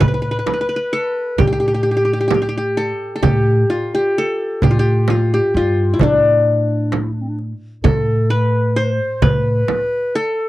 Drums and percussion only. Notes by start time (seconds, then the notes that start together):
0.01 frame drum, darbuka dum
0.47 darbuka tek, frame drum
0.94 darbuka ka
1.38 frame drum, darbuka dum
1.86 darbuka ka
2.31 darbuka tek, frame drum
2.78 darbuka ka
3.23 frame drum, darbuka dum
4.62 darbuka dum, frame drum
5.08 darbuka tek, frame drum
5.54 darbuka ka
5.99 darbuka dum, frame drum
6.46 darbuka ka
6.92 darbuka tek, frame drum
7.39 darbuka ka
7.84 frame drum, darbuka dum
9.22 frame drum, darbuka dum
9.68 darbuka tek, frame drum
10.16 darbuka ka